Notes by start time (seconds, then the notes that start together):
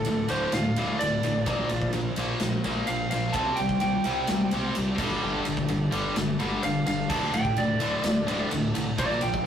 Already playing: D4 A4 F5
0.05 D1 D2 A2, ride
0.28 D1 D2 A2 D3 C5, ride
0.52 D1 D2 A2 F5, snare, ride
0.76 D1 D2 A2 D3, ride
0.99 D1 D2 A2 D5, ride
1.23 A1 D2 A2, ride
1.46 A#1 A#2 F3 A#3 F4 C5, kick, ride
1.69 A#1 A#2 F3, ride
1.82 kick
1.93 A#1 A#2 F3, ride
2.16 A#1 A#2 F3 A#3, ride
2.39 A#1 A#2 F3, snare, ride
2.64 A#1 A#2 F3 A#3, ride
2.87 A#1 A#2 F3 F5, ride
3.10 A#1 A#2 F3 F5, ride
3.32 C2 C3 G3 C4 A5, kick, ride
3.37 C4 G4 D5
3.56 C2 C3 G3 G5, ride
3.69 kick
3.80 C2 C3 G3 G5, ride
4.04 C2 C3 G3 C4, ride
4.27 C2 C3 G3, snare, ride
4.51 C2 C3 G3 C4, ride
4.75 C2 C3 G3, ride
4.98 G1 G2 D3 G3 D4 A4, kick, crash
5.22 G1 G2 D3 G3
5.45 G1 G2 D3, ride
5.57 kick
5.68 G1 G2 D3, ride
5.91 G1 G2 D3 G3, ride
6.16 G1 G2 D3, snare, ride
6.39 G1 G2 D3 G3, ride
6.63 G1 G2 D3 F5, ride
6.86 G1 G2 D3 F5, ride
7.09 D1 D2 A2 D3 E5 A5, kick, crash
7.33 D1 D2 A2 G5, ride
7.45 kick
7.56 D1 D2 A2 D5, ride
7.80 D1 D2 A2 D3, ride
8.03 D1 D2 A2, snare, ride
8.27 D1 D2 A2 D3, ride
8.51 D1 D2 A2, ride
8.74 C2 D2 A2, ride
8.98 A#1 A#2 F3 A#3 F4 C5 D5, kick, ride
9.10 snare
9.21 A#1 A#2 F3 G5, ride
9.34 kick